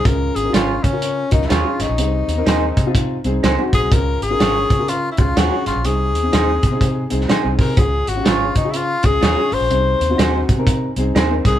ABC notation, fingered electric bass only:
X:1
M:4/4
L:1/16
Q:"Swing" 1/4=124
K:Db
V:1 name="Fingered electric bass" clef=bass
D,,2 A,,,2 A,,,2 D,4 D,,2 E,, z A,,, B,,, | C,,2 E,,2 E,,2 C,4 C,,2 D,, z B,,, C,, | D,,2 A,,,2 A,,,2 D,4 D,,2 E,, z A,,, B,,, | C,,2 E,,2 E,,2 C,2 C,2 C,,2 z C,, C,2 |
D,,2 A,,,2 A,,,2 D,4 D,,2 E,, z A,,, B,,, | C,,2 E,,2 E,,2 C,4 C,,2 E,,2 C,,2 |]